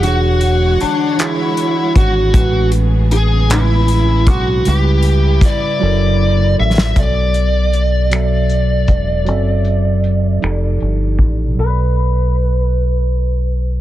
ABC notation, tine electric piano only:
X:1
M:6/8
L:1/8
Q:3/8=52
K:Bm
V:1 name="Tine electric piano"
[E,DF^Gc]3 [E,DFGc]3 | [A,,^G,CB]3 [A,,G,=C^CB]3 | [C,G,EB]3 [F,EA^Ad]3 | [B,,F,Acd]3 [B,,F,Ae]3 |
[F,=CAe]3 [=F,_EGAd]3 | [B,,F,Ad]6 |]